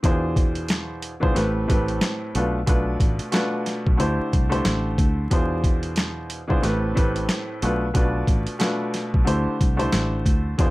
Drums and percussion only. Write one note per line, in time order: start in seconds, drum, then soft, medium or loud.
0.04 kick loud
0.04 closed hi-hat loud
0.36 kick loud
0.36 closed hi-hat medium
0.55 closed hi-hat medium
0.69 snare loud
0.69 closed hi-hat loud
1.02 closed hi-hat medium
1.23 kick medium
1.36 snare soft
1.36 closed hi-hat medium
1.70 kick medium
1.70 closed hi-hat medium
1.88 closed hi-hat soft
2.01 snare loud
2.01 closed hi-hat medium
2.35 closed hi-hat medium
2.67 kick loud
2.67 closed hi-hat loud
3.00 kick loud
3.00 closed hi-hat medium
3.19 closed hi-hat medium
3.32 snare loud
3.32 closed hi-hat loud
3.66 snare soft
3.66 closed hi-hat medium
3.87 kick loud
4.00 closed hi-hat medium
4.33 kick medium
4.33 closed hi-hat medium
4.52 closed hi-hat soft
4.65 snare loud
4.65 closed hi-hat loud
4.98 kick loud
4.98 closed hi-hat medium
5.31 kick loud
5.31 closed hi-hat loud
5.64 kick loud
5.64 closed hi-hat medium
5.83 closed hi-hat medium
5.96 snare loud
5.96 closed hi-hat loud
6.30 closed hi-hat medium
6.50 kick medium
6.63 snare soft
6.63 closed hi-hat medium
6.97 kick medium
6.97 closed hi-hat medium
7.16 closed hi-hat soft
7.29 snare loud
7.29 closed hi-hat medium
7.62 closed hi-hat medium
7.95 kick loud
7.95 closed hi-hat loud
8.28 kick medium
8.28 closed hi-hat medium
8.47 closed hi-hat medium
8.60 snare loud
8.60 closed hi-hat loud
8.94 snare soft
8.94 closed hi-hat medium
9.14 kick medium
9.27 closed hi-hat medium
9.61 kick medium
9.61 closed hi-hat medium
9.80 closed hi-hat soft
9.93 snare loud
9.93 closed hi-hat loud
10.26 kick loud
10.26 closed hi-hat medium
10.59 kick loud
10.59 closed hi-hat loud